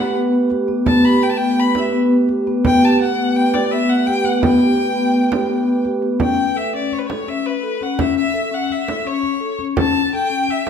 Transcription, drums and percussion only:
0.51 frame drum
0.68 frame drum
0.86 frame drum
1.04 frame drum
1.75 frame drum
2.29 frame drum
2.47 frame drum
2.65 frame drum
2.83 frame drum
3.54 frame drum
4.08 frame drum
4.24 frame drum
4.43 frame drum
4.61 frame drum
5.32 frame drum
5.85 frame drum
6.20 frame drum
6.56 frame drum
6.92 frame drum
7.10 frame drum
7.28 frame drum
7.81 frame drum
7.99 frame drum
8.34 frame drum
8.70 frame drum
8.88 frame drum
9.06 frame drum
9.23 frame drum
9.59 frame drum
9.77 frame drum
10.13 frame drum
10.49 frame drum

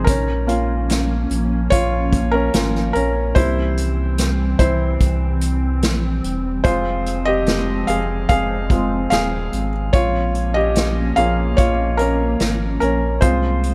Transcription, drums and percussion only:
0.07 kick, closed hi-hat
0.49 closed hi-hat
0.90 snare, closed hi-hat
1.31 closed hi-hat
1.72 kick, closed hi-hat
2.13 kick, closed hi-hat
2.54 snare, closed hi-hat
2.75 snare
2.95 closed hi-hat
3.36 kick, closed hi-hat
3.77 closed hi-hat
4.18 snare, closed hi-hat
4.59 kick, closed hi-hat
5.00 kick, closed hi-hat
5.41 closed hi-hat
5.82 snare, closed hi-hat
6.24 closed hi-hat
6.65 kick, closed hi-hat
7.06 closed hi-hat
7.46 snare, closed hi-hat
7.88 closed hi-hat
8.29 kick, closed hi-hat
8.70 kick, closed hi-hat
9.11 snare, closed hi-hat
9.53 closed hi-hat
9.94 kick, closed hi-hat
10.35 closed hi-hat
10.75 snare, closed hi-hat
11.17 closed hi-hat
11.58 kick, closed hi-hat
11.99 closed hi-hat
12.40 snare, closed hi-hat
12.81 closed hi-hat
13.22 kick, closed hi-hat
13.64 closed hi-hat

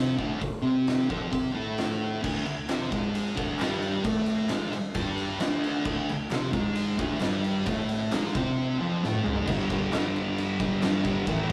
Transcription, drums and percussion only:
0.19 kick
0.42 kick, open hi-hat
0.87 snare, open hi-hat
1.10 kick
1.33 kick, open hi-hat
1.78 snare, open hi-hat
2.24 kick, crash
2.46 ride
2.69 snare, clap, ride
2.92 kick, ride
3.15 ride
3.37 kick, ride
3.59 snare, clap, ride
3.82 ride
4.04 kick, ride
4.26 ride
4.49 snare, clap, ride
4.73 ride
4.95 kick, ride
5.18 ride
5.40 snare, clap, ride
5.64 ride
5.85 kick, crash
6.09 ride
6.31 snare, clap, ride
6.53 kick, ride
6.75 ride
6.99 kick, ride
7.21 snare, clap, ride
7.44 ride
7.66 kick, ride
7.89 ride
8.12 snare, clap, ride
8.35 kick, ride
9.03 snare
9.15 high tom
9.26 mid tom
9.36 floor tom
9.47 kick, crash
9.70 kick, crash
9.93 snare, clap, crash
10.16 crash
10.38 crash
10.60 kick, crash
10.82 snare, clap, crash
11.04 kick, snare, crash
11.27 kick, crash

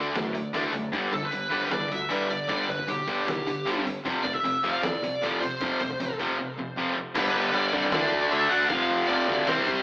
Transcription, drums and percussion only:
0.15 snare, open hi-hat
0.35 open hi-hat
0.54 snare, open hi-hat
0.73 floor tom, open hi-hat
0.93 kick, open hi-hat
1.13 kick, open hi-hat
1.23 kick
1.32 open hi-hat
1.52 kick, open hi-hat
1.71 snare, open hi-hat
1.92 open hi-hat
2.11 snare, open hi-hat
2.30 open hi-hat
2.49 kick, open hi-hat
2.69 kick, open hi-hat
2.79 kick
2.88 open hi-hat
3.08 kick, open hi-hat
3.28 snare, open hi-hat
3.48 open hi-hat
3.67 open hi-hat
3.87 open hi-hat
4.06 kick, open hi-hat
4.25 kick, open hi-hat
4.35 kick
4.45 open hi-hat
4.64 kick, open hi-hat
4.83 snare, open hi-hat
5.04 open hi-hat
5.23 snare, open hi-hat
5.43 open hi-hat
5.61 kick, open hi-hat
5.80 kick, open hi-hat
5.90 kick
6.00 open hi-hat
6.19 kick, open hi-hat
7.15 kick, crash
7.54 crash
7.73 kick
7.84 snare
7.92 snare, crash
8.12 kick
8.31 crash
8.70 kick, crash
9.09 crash
9.28 kick
9.38 snare
9.47 snare, crash
9.67 kick

